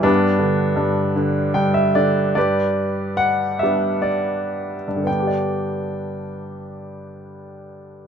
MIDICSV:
0, 0, Header, 1, 2, 480
1, 0, Start_track
1, 0, Key_signature, 1, "major"
1, 0, Tempo, 753769
1, 25, Time_signature, 6, 3, 24, 8
1, 986, Tempo, 828729
1, 1946, Tempo, 879765
1, 2426, Tempo, 1013514
1, 4313, End_track
2, 0, Start_track
2, 0, Title_t, "Grand piano"
2, 0, Program_c, 0, 0
2, 0, Control_c, 0, 64, 127
2, 19, Note_on_c, 0, 43, 58
2, 20, Note_on_c, 0, 62, 79
2, 24, Note_on_c, 0, 59, 52
2, 33, Control_c, 0, 64, 0
2, 152, Control_c, 0, 64, 127
2, 249, Note_on_c, 0, 50, 49
2, 475, Note_off_c, 0, 43, 0
2, 484, Note_on_c, 0, 43, 50
2, 728, Note_off_c, 0, 50, 0
2, 738, Note_on_c, 0, 50, 48
2, 974, Note_off_c, 0, 43, 0
2, 982, Note_on_c, 0, 79, 60
2, 984, Note_on_c, 0, 43, 54
2, 1091, Note_off_c, 0, 79, 0
2, 1097, Note_on_c, 0, 76, 59
2, 1193, Note_off_c, 0, 62, 0
2, 1195, Note_off_c, 0, 59, 0
2, 1208, Note_off_c, 0, 76, 0
2, 1212, Note_off_c, 0, 50, 0
2, 1219, Note_on_c, 0, 74, 61
2, 1221, Note_on_c, 0, 50, 46
2, 1440, Note_off_c, 0, 74, 0
2, 1442, Note_off_c, 0, 43, 0
2, 1451, Note_off_c, 0, 50, 0
2, 1452, Note_on_c, 0, 74, 60
2, 1455, Note_on_c, 0, 43, 45
2, 1465, Control_c, 0, 64, 0
2, 1465, Note_on_c, 0, 67, 43
2, 1468, Note_on_c, 0, 71, 44
2, 1576, Control_c, 0, 64, 127
2, 1925, Note_on_c, 0, 78, 75
2, 1957, Note_off_c, 0, 74, 0
2, 2157, Note_on_c, 0, 76, 55
2, 2163, Note_off_c, 0, 67, 0
2, 2165, Note_off_c, 0, 71, 0
2, 2178, Note_on_c, 0, 55, 31
2, 2179, Note_off_c, 0, 78, 0
2, 2181, Note_on_c, 0, 59, 33
2, 2181, Note_on_c, 0, 62, 39
2, 2390, Note_on_c, 0, 74, 58
2, 2422, Note_off_c, 0, 76, 0
2, 2738, Note_off_c, 0, 74, 0
2, 2794, Note_off_c, 0, 43, 0
2, 2801, Note_on_c, 0, 43, 31
2, 2841, Note_on_c, 0, 50, 31
2, 2869, Note_off_c, 0, 59, 0
2, 2876, Note_off_c, 0, 55, 0
2, 2876, Note_on_c, 0, 59, 27
2, 2877, Note_off_c, 0, 62, 0
2, 2891, Note_on_c, 0, 79, 50
2, 2902, Control_c, 0, 64, 0
2, 2914, Note_on_c, 0, 62, 28
2, 2952, Note_on_c, 0, 67, 28
2, 2988, Note_on_c, 0, 74, 33
2, 2993, Control_c, 0, 64, 127
2, 4313, Note_off_c, 0, 43, 0
2, 4313, Note_off_c, 0, 50, 0
2, 4313, Note_off_c, 0, 59, 0
2, 4313, Note_off_c, 0, 62, 0
2, 4313, Note_off_c, 0, 67, 0
2, 4313, Note_off_c, 0, 74, 0
2, 4313, Note_off_c, 0, 79, 0
2, 4313, End_track
0, 0, End_of_file